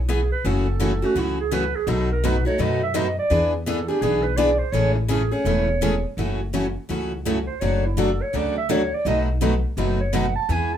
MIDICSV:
0, 0, Header, 1, 5, 480
1, 0, Start_track
1, 0, Tempo, 359066
1, 591, Time_signature, 4, 2, 24, 8
1, 14404, End_track
2, 0, Start_track
2, 0, Title_t, "Clarinet"
2, 0, Program_c, 0, 71
2, 113, Note_on_c, 0, 68, 74
2, 412, Note_off_c, 0, 68, 0
2, 423, Note_on_c, 0, 71, 91
2, 627, Note_on_c, 0, 69, 86
2, 647, Note_off_c, 0, 71, 0
2, 1401, Note_on_c, 0, 66, 86
2, 1421, Note_off_c, 0, 69, 0
2, 1586, Note_on_c, 0, 64, 72
2, 1606, Note_off_c, 0, 66, 0
2, 1858, Note_off_c, 0, 64, 0
2, 1866, Note_on_c, 0, 68, 85
2, 2048, Note_on_c, 0, 71, 93
2, 2068, Note_off_c, 0, 68, 0
2, 2347, Note_on_c, 0, 68, 88
2, 2367, Note_off_c, 0, 71, 0
2, 2522, Note_on_c, 0, 69, 79
2, 2542, Note_off_c, 0, 68, 0
2, 2814, Note_off_c, 0, 69, 0
2, 2831, Note_on_c, 0, 70, 75
2, 3013, Note_on_c, 0, 71, 81
2, 3033, Note_off_c, 0, 70, 0
2, 3283, Note_off_c, 0, 71, 0
2, 3291, Note_on_c, 0, 73, 92
2, 3493, Note_on_c, 0, 75, 85
2, 3513, Note_off_c, 0, 73, 0
2, 3773, Note_off_c, 0, 75, 0
2, 3781, Note_on_c, 0, 76, 100
2, 3949, Note_on_c, 0, 75, 90
2, 3969, Note_off_c, 0, 76, 0
2, 4247, Note_off_c, 0, 75, 0
2, 4257, Note_on_c, 0, 74, 94
2, 4697, Note_off_c, 0, 74, 0
2, 4899, Note_on_c, 0, 69, 81
2, 5187, Note_on_c, 0, 67, 93
2, 5207, Note_off_c, 0, 69, 0
2, 5362, Note_on_c, 0, 68, 91
2, 5382, Note_off_c, 0, 67, 0
2, 5649, Note_on_c, 0, 71, 93
2, 5669, Note_off_c, 0, 68, 0
2, 5841, Note_on_c, 0, 74, 100
2, 5861, Note_off_c, 0, 71, 0
2, 6129, Note_on_c, 0, 72, 94
2, 6149, Note_off_c, 0, 74, 0
2, 6311, Note_on_c, 0, 73, 108
2, 6331, Note_off_c, 0, 72, 0
2, 6597, Note_off_c, 0, 73, 0
2, 6605, Note_on_c, 0, 64, 49
2, 6806, Note_on_c, 0, 68, 87
2, 6819, Note_off_c, 0, 64, 0
2, 7112, Note_on_c, 0, 73, 108
2, 7132, Note_off_c, 0, 68, 0
2, 8258, Note_off_c, 0, 73, 0
2, 9981, Note_on_c, 0, 72, 90
2, 10163, Note_on_c, 0, 73, 98
2, 10183, Note_off_c, 0, 72, 0
2, 10503, Note_on_c, 0, 64, 72
2, 10523, Note_off_c, 0, 73, 0
2, 10679, Note_on_c, 0, 69, 81
2, 10699, Note_off_c, 0, 64, 0
2, 10982, Note_on_c, 0, 73, 96
2, 11002, Note_off_c, 0, 69, 0
2, 11178, Note_on_c, 0, 74, 83
2, 11198, Note_off_c, 0, 73, 0
2, 11454, Note_off_c, 0, 74, 0
2, 11462, Note_on_c, 0, 76, 111
2, 11637, Note_on_c, 0, 73, 95
2, 11657, Note_off_c, 0, 76, 0
2, 11951, Note_on_c, 0, 74, 99
2, 11971, Note_off_c, 0, 73, 0
2, 12120, Note_off_c, 0, 74, 0
2, 12131, Note_on_c, 0, 75, 94
2, 12304, Note_off_c, 0, 75, 0
2, 13364, Note_on_c, 0, 73, 80
2, 13559, Note_on_c, 0, 78, 79
2, 13579, Note_off_c, 0, 73, 0
2, 13829, Note_off_c, 0, 78, 0
2, 13838, Note_on_c, 0, 81, 107
2, 14054, Note_on_c, 0, 80, 92
2, 14074, Note_off_c, 0, 81, 0
2, 14347, Note_on_c, 0, 81, 92
2, 14367, Note_off_c, 0, 80, 0
2, 14404, Note_off_c, 0, 81, 0
2, 14404, End_track
3, 0, Start_track
3, 0, Title_t, "Steel-string acoustic guitar"
3, 0, Program_c, 1, 25
3, 599, Note_on_c, 1, 54, 68
3, 611, Note_on_c, 1, 64, 71
3, 613, Note_on_c, 1, 73, 78
3, 880, Note_off_c, 1, 54, 0
3, 886, Note_off_c, 1, 64, 0
3, 887, Note_off_c, 1, 73, 0
3, 1074, Note_on_c, 1, 54, 86
3, 1083, Note_on_c, 1, 64, 96
3, 1086, Note_on_c, 1, 73, 97
3, 1223, Note_off_c, 1, 54, 0
3, 1227, Note_off_c, 1, 64, 0
3, 1229, Note_off_c, 1, 73, 0
3, 1555, Note_on_c, 1, 54, 64
3, 1560, Note_on_c, 1, 64, 70
3, 1563, Note_on_c, 1, 73, 73
3, 1837, Note_off_c, 1, 54, 0
3, 1840, Note_off_c, 1, 64, 0
3, 1841, Note_off_c, 1, 73, 0
3, 2029, Note_on_c, 1, 54, 95
3, 2039, Note_on_c, 1, 73, 102
3, 2042, Note_on_c, 1, 64, 101
3, 2179, Note_off_c, 1, 54, 0
3, 2185, Note_off_c, 1, 73, 0
3, 2186, Note_off_c, 1, 64, 0
3, 2509, Note_on_c, 1, 71, 79
3, 2793, Note_off_c, 1, 71, 0
3, 3003, Note_on_c, 1, 71, 110
3, 3146, Note_off_c, 1, 71, 0
3, 3468, Note_on_c, 1, 71, 80
3, 3752, Note_off_c, 1, 71, 0
3, 3949, Note_on_c, 1, 71, 102
3, 4098, Note_off_c, 1, 71, 0
3, 4435, Note_on_c, 1, 71, 82
3, 4715, Note_off_c, 1, 71, 0
3, 4920, Note_on_c, 1, 71, 102
3, 5063, Note_off_c, 1, 71, 0
3, 5393, Note_on_c, 1, 71, 72
3, 5674, Note_off_c, 1, 71, 0
3, 5866, Note_on_c, 1, 71, 109
3, 6015, Note_off_c, 1, 71, 0
3, 6346, Note_on_c, 1, 56, 84
3, 6350, Note_on_c, 1, 64, 76
3, 6352, Note_on_c, 1, 69, 87
3, 6630, Note_off_c, 1, 56, 0
3, 6632, Note_off_c, 1, 64, 0
3, 6633, Note_off_c, 1, 69, 0
3, 6823, Note_on_c, 1, 56, 87
3, 6823, Note_on_c, 1, 64, 97
3, 6834, Note_on_c, 1, 69, 100
3, 6974, Note_off_c, 1, 56, 0
3, 6974, Note_off_c, 1, 64, 0
3, 6980, Note_off_c, 1, 69, 0
3, 7289, Note_on_c, 1, 56, 74
3, 7292, Note_on_c, 1, 64, 76
3, 7299, Note_on_c, 1, 69, 77
3, 7582, Note_off_c, 1, 56, 0
3, 7583, Note_off_c, 1, 64, 0
3, 7586, Note_off_c, 1, 69, 0
3, 7776, Note_on_c, 1, 56, 100
3, 7779, Note_on_c, 1, 64, 104
3, 7784, Note_on_c, 1, 69, 97
3, 7930, Note_off_c, 1, 56, 0
3, 7932, Note_off_c, 1, 64, 0
3, 7935, Note_off_c, 1, 69, 0
3, 8267, Note_on_c, 1, 54, 69
3, 8268, Note_on_c, 1, 64, 70
3, 8271, Note_on_c, 1, 73, 77
3, 8551, Note_off_c, 1, 54, 0
3, 8552, Note_off_c, 1, 64, 0
3, 8553, Note_off_c, 1, 73, 0
3, 8729, Note_on_c, 1, 54, 87
3, 8739, Note_on_c, 1, 64, 90
3, 8739, Note_on_c, 1, 73, 98
3, 8887, Note_off_c, 1, 54, 0
3, 8893, Note_off_c, 1, 64, 0
3, 8893, Note_off_c, 1, 73, 0
3, 9212, Note_on_c, 1, 54, 66
3, 9227, Note_on_c, 1, 64, 63
3, 9228, Note_on_c, 1, 73, 69
3, 9504, Note_off_c, 1, 54, 0
3, 9511, Note_off_c, 1, 64, 0
3, 9512, Note_off_c, 1, 73, 0
3, 9699, Note_on_c, 1, 54, 84
3, 9711, Note_on_c, 1, 64, 90
3, 9715, Note_on_c, 1, 73, 99
3, 9853, Note_off_c, 1, 54, 0
3, 9859, Note_off_c, 1, 64, 0
3, 9861, Note_off_c, 1, 73, 0
3, 10206, Note_on_c, 1, 73, 81
3, 10482, Note_off_c, 1, 73, 0
3, 10661, Note_on_c, 1, 73, 99
3, 10815, Note_off_c, 1, 73, 0
3, 11147, Note_on_c, 1, 73, 72
3, 11433, Note_off_c, 1, 73, 0
3, 11623, Note_on_c, 1, 73, 108
3, 11777, Note_off_c, 1, 73, 0
3, 12111, Note_on_c, 1, 71, 82
3, 12396, Note_off_c, 1, 71, 0
3, 12589, Note_on_c, 1, 71, 96
3, 12740, Note_off_c, 1, 71, 0
3, 13071, Note_on_c, 1, 71, 78
3, 13356, Note_off_c, 1, 71, 0
3, 13547, Note_on_c, 1, 71, 106
3, 13699, Note_off_c, 1, 71, 0
3, 14035, Note_on_c, 1, 56, 65
3, 14318, Note_off_c, 1, 56, 0
3, 14404, End_track
4, 0, Start_track
4, 0, Title_t, "Steel-string acoustic guitar"
4, 0, Program_c, 2, 25
4, 114, Note_on_c, 2, 59, 96
4, 115, Note_on_c, 2, 52, 89
4, 122, Note_on_c, 2, 64, 98
4, 129, Note_on_c, 2, 68, 104
4, 264, Note_off_c, 2, 52, 0
4, 264, Note_off_c, 2, 59, 0
4, 268, Note_off_c, 2, 64, 0
4, 271, Note_off_c, 2, 68, 0
4, 596, Note_on_c, 2, 49, 71
4, 601, Note_on_c, 2, 52, 71
4, 604, Note_on_c, 2, 61, 76
4, 609, Note_on_c, 2, 57, 74
4, 615, Note_on_c, 2, 66, 85
4, 878, Note_off_c, 2, 49, 0
4, 881, Note_off_c, 2, 52, 0
4, 882, Note_off_c, 2, 61, 0
4, 885, Note_off_c, 2, 57, 0
4, 888, Note_off_c, 2, 66, 0
4, 1064, Note_on_c, 2, 49, 91
4, 1071, Note_on_c, 2, 52, 97
4, 1073, Note_on_c, 2, 57, 95
4, 1076, Note_on_c, 2, 61, 100
4, 1077, Note_on_c, 2, 66, 96
4, 1218, Note_off_c, 2, 49, 0
4, 1221, Note_off_c, 2, 52, 0
4, 1222, Note_off_c, 2, 57, 0
4, 1224, Note_off_c, 2, 61, 0
4, 1224, Note_off_c, 2, 66, 0
4, 1366, Note_on_c, 2, 66, 60
4, 1383, Note_on_c, 2, 61, 53
4, 1388, Note_on_c, 2, 57, 46
4, 1539, Note_off_c, 2, 61, 0
4, 1540, Note_off_c, 2, 57, 0
4, 1540, Note_off_c, 2, 66, 0
4, 1544, Note_on_c, 2, 52, 71
4, 1545, Note_on_c, 2, 49, 73
4, 1555, Note_on_c, 2, 61, 75
4, 1555, Note_on_c, 2, 66, 73
4, 1556, Note_on_c, 2, 57, 71
4, 1832, Note_off_c, 2, 49, 0
4, 1832, Note_off_c, 2, 52, 0
4, 1837, Note_off_c, 2, 57, 0
4, 1837, Note_off_c, 2, 61, 0
4, 1837, Note_off_c, 2, 66, 0
4, 2023, Note_on_c, 2, 49, 96
4, 2027, Note_on_c, 2, 52, 93
4, 2027, Note_on_c, 2, 57, 90
4, 2036, Note_on_c, 2, 66, 96
4, 2037, Note_on_c, 2, 61, 105
4, 2177, Note_off_c, 2, 49, 0
4, 2178, Note_off_c, 2, 52, 0
4, 2178, Note_off_c, 2, 57, 0
4, 2183, Note_off_c, 2, 61, 0
4, 2183, Note_off_c, 2, 66, 0
4, 2499, Note_on_c, 2, 47, 70
4, 2503, Note_on_c, 2, 54, 71
4, 2511, Note_on_c, 2, 57, 71
4, 2511, Note_on_c, 2, 63, 79
4, 2517, Note_on_c, 2, 66, 82
4, 2788, Note_off_c, 2, 47, 0
4, 2790, Note_off_c, 2, 54, 0
4, 2794, Note_off_c, 2, 57, 0
4, 2794, Note_off_c, 2, 63, 0
4, 2797, Note_off_c, 2, 66, 0
4, 2989, Note_on_c, 2, 54, 91
4, 2989, Note_on_c, 2, 57, 90
4, 2990, Note_on_c, 2, 47, 89
4, 3001, Note_on_c, 2, 63, 91
4, 3002, Note_on_c, 2, 66, 106
4, 3139, Note_off_c, 2, 47, 0
4, 3139, Note_off_c, 2, 54, 0
4, 3139, Note_off_c, 2, 57, 0
4, 3145, Note_off_c, 2, 63, 0
4, 3145, Note_off_c, 2, 66, 0
4, 3274, Note_on_c, 2, 66, 55
4, 3292, Note_on_c, 2, 63, 58
4, 3306, Note_on_c, 2, 57, 51
4, 3451, Note_off_c, 2, 57, 0
4, 3452, Note_off_c, 2, 63, 0
4, 3453, Note_off_c, 2, 66, 0
4, 3461, Note_on_c, 2, 47, 69
4, 3466, Note_on_c, 2, 54, 66
4, 3467, Note_on_c, 2, 57, 74
4, 3468, Note_on_c, 2, 63, 75
4, 3477, Note_on_c, 2, 66, 77
4, 3749, Note_off_c, 2, 47, 0
4, 3751, Note_off_c, 2, 54, 0
4, 3751, Note_off_c, 2, 57, 0
4, 3752, Note_off_c, 2, 63, 0
4, 3757, Note_off_c, 2, 66, 0
4, 3930, Note_on_c, 2, 47, 88
4, 3933, Note_on_c, 2, 54, 94
4, 3938, Note_on_c, 2, 57, 95
4, 3940, Note_on_c, 2, 63, 106
4, 3943, Note_on_c, 2, 66, 107
4, 4089, Note_off_c, 2, 47, 0
4, 4090, Note_off_c, 2, 54, 0
4, 4092, Note_off_c, 2, 57, 0
4, 4093, Note_off_c, 2, 63, 0
4, 4095, Note_off_c, 2, 66, 0
4, 4411, Note_on_c, 2, 52, 77
4, 4417, Note_on_c, 2, 59, 71
4, 4418, Note_on_c, 2, 62, 77
4, 4427, Note_on_c, 2, 68, 79
4, 4703, Note_off_c, 2, 52, 0
4, 4706, Note_off_c, 2, 59, 0
4, 4706, Note_off_c, 2, 62, 0
4, 4711, Note_off_c, 2, 68, 0
4, 4897, Note_on_c, 2, 52, 101
4, 4907, Note_on_c, 2, 59, 92
4, 4907, Note_on_c, 2, 62, 100
4, 4914, Note_on_c, 2, 68, 111
4, 5052, Note_off_c, 2, 52, 0
4, 5056, Note_off_c, 2, 62, 0
4, 5057, Note_off_c, 2, 59, 0
4, 5060, Note_off_c, 2, 68, 0
4, 5191, Note_on_c, 2, 68, 63
4, 5206, Note_on_c, 2, 62, 50
4, 5220, Note_on_c, 2, 59, 49
4, 5364, Note_off_c, 2, 59, 0
4, 5370, Note_off_c, 2, 62, 0
4, 5370, Note_off_c, 2, 68, 0
4, 5375, Note_on_c, 2, 52, 78
4, 5380, Note_on_c, 2, 59, 76
4, 5386, Note_on_c, 2, 62, 73
4, 5390, Note_on_c, 2, 68, 83
4, 5665, Note_off_c, 2, 52, 0
4, 5667, Note_off_c, 2, 59, 0
4, 5670, Note_off_c, 2, 62, 0
4, 5672, Note_off_c, 2, 68, 0
4, 5847, Note_on_c, 2, 52, 93
4, 5850, Note_on_c, 2, 59, 96
4, 5855, Note_on_c, 2, 62, 114
4, 5866, Note_on_c, 2, 68, 111
4, 6006, Note_off_c, 2, 52, 0
4, 6008, Note_off_c, 2, 59, 0
4, 6010, Note_off_c, 2, 62, 0
4, 6016, Note_off_c, 2, 68, 0
4, 6326, Note_on_c, 2, 49, 68
4, 6329, Note_on_c, 2, 52, 76
4, 6331, Note_on_c, 2, 57, 84
4, 6336, Note_on_c, 2, 68, 77
4, 6340, Note_on_c, 2, 61, 78
4, 6620, Note_off_c, 2, 49, 0
4, 6621, Note_off_c, 2, 52, 0
4, 6623, Note_off_c, 2, 57, 0
4, 6625, Note_off_c, 2, 68, 0
4, 6627, Note_off_c, 2, 61, 0
4, 6796, Note_on_c, 2, 49, 91
4, 6799, Note_on_c, 2, 52, 100
4, 6806, Note_on_c, 2, 57, 99
4, 6806, Note_on_c, 2, 61, 106
4, 6812, Note_on_c, 2, 68, 95
4, 6961, Note_off_c, 2, 49, 0
4, 6962, Note_off_c, 2, 52, 0
4, 6965, Note_off_c, 2, 57, 0
4, 6965, Note_off_c, 2, 61, 0
4, 6969, Note_off_c, 2, 68, 0
4, 7104, Note_on_c, 2, 68, 58
4, 7115, Note_on_c, 2, 61, 55
4, 7126, Note_on_c, 2, 57, 54
4, 7284, Note_off_c, 2, 57, 0
4, 7286, Note_off_c, 2, 68, 0
4, 7291, Note_off_c, 2, 61, 0
4, 7298, Note_on_c, 2, 49, 73
4, 7300, Note_on_c, 2, 57, 79
4, 7301, Note_on_c, 2, 52, 80
4, 7306, Note_on_c, 2, 61, 83
4, 7311, Note_on_c, 2, 68, 74
4, 7586, Note_off_c, 2, 49, 0
4, 7587, Note_off_c, 2, 52, 0
4, 7587, Note_off_c, 2, 57, 0
4, 7590, Note_off_c, 2, 61, 0
4, 7592, Note_off_c, 2, 68, 0
4, 7778, Note_on_c, 2, 52, 104
4, 7779, Note_on_c, 2, 49, 103
4, 7784, Note_on_c, 2, 57, 107
4, 7790, Note_on_c, 2, 68, 104
4, 7791, Note_on_c, 2, 61, 101
4, 7932, Note_off_c, 2, 49, 0
4, 7932, Note_off_c, 2, 52, 0
4, 7935, Note_off_c, 2, 57, 0
4, 7938, Note_off_c, 2, 61, 0
4, 7938, Note_off_c, 2, 68, 0
4, 8258, Note_on_c, 2, 49, 65
4, 8260, Note_on_c, 2, 52, 67
4, 8271, Note_on_c, 2, 61, 77
4, 8273, Note_on_c, 2, 57, 73
4, 8274, Note_on_c, 2, 66, 76
4, 8546, Note_off_c, 2, 49, 0
4, 8547, Note_off_c, 2, 52, 0
4, 8553, Note_off_c, 2, 61, 0
4, 8554, Note_off_c, 2, 57, 0
4, 8554, Note_off_c, 2, 66, 0
4, 8736, Note_on_c, 2, 49, 87
4, 8737, Note_on_c, 2, 57, 87
4, 8739, Note_on_c, 2, 52, 84
4, 8744, Note_on_c, 2, 61, 92
4, 8749, Note_on_c, 2, 66, 92
4, 8891, Note_off_c, 2, 49, 0
4, 8892, Note_off_c, 2, 57, 0
4, 8893, Note_off_c, 2, 52, 0
4, 8895, Note_off_c, 2, 61, 0
4, 8898, Note_off_c, 2, 66, 0
4, 9208, Note_on_c, 2, 49, 72
4, 9214, Note_on_c, 2, 52, 62
4, 9223, Note_on_c, 2, 57, 64
4, 9224, Note_on_c, 2, 61, 72
4, 9228, Note_on_c, 2, 66, 76
4, 9502, Note_off_c, 2, 49, 0
4, 9505, Note_off_c, 2, 52, 0
4, 9509, Note_off_c, 2, 57, 0
4, 9510, Note_off_c, 2, 61, 0
4, 9512, Note_off_c, 2, 66, 0
4, 9697, Note_on_c, 2, 49, 86
4, 9704, Note_on_c, 2, 52, 95
4, 9708, Note_on_c, 2, 57, 101
4, 9710, Note_on_c, 2, 61, 97
4, 9713, Note_on_c, 2, 66, 97
4, 9853, Note_off_c, 2, 49, 0
4, 9856, Note_off_c, 2, 52, 0
4, 9858, Note_off_c, 2, 57, 0
4, 9859, Note_off_c, 2, 61, 0
4, 9861, Note_off_c, 2, 66, 0
4, 10175, Note_on_c, 2, 49, 69
4, 10179, Note_on_c, 2, 54, 68
4, 10181, Note_on_c, 2, 57, 76
4, 10186, Note_on_c, 2, 62, 70
4, 10186, Note_on_c, 2, 66, 79
4, 10467, Note_off_c, 2, 49, 0
4, 10468, Note_off_c, 2, 54, 0
4, 10470, Note_off_c, 2, 57, 0
4, 10472, Note_off_c, 2, 62, 0
4, 10472, Note_off_c, 2, 66, 0
4, 10659, Note_on_c, 2, 49, 82
4, 10665, Note_on_c, 2, 54, 94
4, 10667, Note_on_c, 2, 57, 86
4, 10667, Note_on_c, 2, 62, 95
4, 10675, Note_on_c, 2, 66, 104
4, 10814, Note_off_c, 2, 49, 0
4, 10817, Note_off_c, 2, 54, 0
4, 10818, Note_off_c, 2, 57, 0
4, 10818, Note_off_c, 2, 62, 0
4, 10822, Note_off_c, 2, 66, 0
4, 11144, Note_on_c, 2, 49, 68
4, 11152, Note_on_c, 2, 54, 68
4, 11153, Note_on_c, 2, 57, 74
4, 11160, Note_on_c, 2, 66, 80
4, 11161, Note_on_c, 2, 62, 71
4, 11432, Note_off_c, 2, 49, 0
4, 11436, Note_off_c, 2, 54, 0
4, 11436, Note_off_c, 2, 57, 0
4, 11440, Note_off_c, 2, 62, 0
4, 11440, Note_off_c, 2, 66, 0
4, 11620, Note_on_c, 2, 54, 98
4, 11622, Note_on_c, 2, 49, 97
4, 11625, Note_on_c, 2, 57, 98
4, 11631, Note_on_c, 2, 62, 100
4, 11633, Note_on_c, 2, 66, 107
4, 11775, Note_off_c, 2, 54, 0
4, 11776, Note_off_c, 2, 49, 0
4, 11778, Note_off_c, 2, 57, 0
4, 11781, Note_off_c, 2, 62, 0
4, 11782, Note_off_c, 2, 66, 0
4, 12110, Note_on_c, 2, 47, 66
4, 12118, Note_on_c, 2, 54, 78
4, 12119, Note_on_c, 2, 57, 73
4, 12124, Note_on_c, 2, 63, 79
4, 12127, Note_on_c, 2, 66, 80
4, 12395, Note_off_c, 2, 47, 0
4, 12399, Note_off_c, 2, 54, 0
4, 12400, Note_off_c, 2, 57, 0
4, 12402, Note_off_c, 2, 63, 0
4, 12404, Note_off_c, 2, 66, 0
4, 12577, Note_on_c, 2, 47, 94
4, 12585, Note_on_c, 2, 54, 94
4, 12590, Note_on_c, 2, 57, 97
4, 12595, Note_on_c, 2, 63, 94
4, 12603, Note_on_c, 2, 66, 100
4, 12734, Note_off_c, 2, 47, 0
4, 12738, Note_off_c, 2, 54, 0
4, 12741, Note_off_c, 2, 57, 0
4, 12743, Note_off_c, 2, 63, 0
4, 12747, Note_off_c, 2, 66, 0
4, 13068, Note_on_c, 2, 54, 70
4, 13069, Note_on_c, 2, 47, 70
4, 13076, Note_on_c, 2, 57, 70
4, 13079, Note_on_c, 2, 63, 74
4, 13086, Note_on_c, 2, 66, 74
4, 13354, Note_off_c, 2, 54, 0
4, 13355, Note_off_c, 2, 47, 0
4, 13358, Note_off_c, 2, 57, 0
4, 13360, Note_off_c, 2, 63, 0
4, 13363, Note_off_c, 2, 66, 0
4, 13540, Note_on_c, 2, 47, 97
4, 13546, Note_on_c, 2, 54, 94
4, 13556, Note_on_c, 2, 57, 89
4, 13558, Note_on_c, 2, 63, 96
4, 13561, Note_on_c, 2, 66, 107
4, 13696, Note_off_c, 2, 47, 0
4, 13699, Note_off_c, 2, 54, 0
4, 13704, Note_off_c, 2, 57, 0
4, 13705, Note_off_c, 2, 63, 0
4, 13706, Note_off_c, 2, 66, 0
4, 14023, Note_on_c, 2, 52, 70
4, 14030, Note_on_c, 2, 59, 74
4, 14036, Note_on_c, 2, 64, 73
4, 14040, Note_on_c, 2, 68, 76
4, 14312, Note_off_c, 2, 52, 0
4, 14315, Note_off_c, 2, 59, 0
4, 14318, Note_off_c, 2, 64, 0
4, 14320, Note_off_c, 2, 68, 0
4, 14404, End_track
5, 0, Start_track
5, 0, Title_t, "Upright bass"
5, 0, Program_c, 3, 32
5, 0, Note_on_c, 3, 35, 81
5, 401, Note_off_c, 3, 35, 0
5, 593, Note_on_c, 3, 30, 90
5, 1358, Note_off_c, 3, 30, 0
5, 1538, Note_on_c, 3, 37, 83
5, 2309, Note_off_c, 3, 37, 0
5, 2495, Note_on_c, 3, 35, 96
5, 3266, Note_off_c, 3, 35, 0
5, 3462, Note_on_c, 3, 42, 88
5, 4230, Note_off_c, 3, 42, 0
5, 4416, Note_on_c, 3, 40, 93
5, 5187, Note_off_c, 3, 40, 0
5, 5366, Note_on_c, 3, 35, 90
5, 6140, Note_off_c, 3, 35, 0
5, 6314, Note_on_c, 3, 33, 100
5, 7093, Note_off_c, 3, 33, 0
5, 7279, Note_on_c, 3, 28, 86
5, 8057, Note_off_c, 3, 28, 0
5, 8247, Note_on_c, 3, 30, 83
5, 9022, Note_off_c, 3, 30, 0
5, 9216, Note_on_c, 3, 37, 79
5, 9988, Note_off_c, 3, 37, 0
5, 10185, Note_on_c, 3, 30, 94
5, 10954, Note_off_c, 3, 30, 0
5, 11140, Note_on_c, 3, 38, 88
5, 11912, Note_off_c, 3, 38, 0
5, 12098, Note_on_c, 3, 35, 91
5, 12871, Note_off_c, 3, 35, 0
5, 13057, Note_on_c, 3, 30, 84
5, 13830, Note_off_c, 3, 30, 0
5, 14018, Note_on_c, 3, 40, 93
5, 14404, Note_off_c, 3, 40, 0
5, 14404, End_track
0, 0, End_of_file